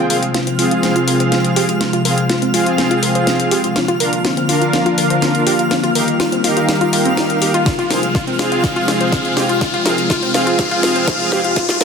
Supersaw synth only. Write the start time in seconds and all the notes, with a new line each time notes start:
0.10 C4 F4 G#4 F5
0.59 C4 F4 G#4 F5
1.08 C4 F4 G#4 F5
1.56 C4 F4 G#4 F5
2.05 C4 F4 G#4 F5
2.54 C4 F4 G#4 F5
3.03 C4 F4 G#4 F5
3.51 C4 F4 G#4 F5
4.00 D4 F4 A#4 F5
4.49 D4 F4 A#4 F5
4.98 D4 F4 A#4 F5
5.47 D4 F4 A#4 F5
5.95 D#4 G4 A#4 F5
6.44 D#4 G4 A#4 F5
6.93 D#4 G4 A#4 F5
7.42 D#4 G4 A#4 F5
7.91 C4 F4 G#4 F5
8.39 C4 F4 G#4 F5
8.88 C4 F4 G#4 F5
9.37 C4 F4 G#4 F5
9.86 C4 F4 G#4 F5
10.34 C4 F4 G#4 F5
10.83 C4 F4 G#4 F5
11.32 C4 F4 G#4 F5
11.81 D4 F4 A#4 F5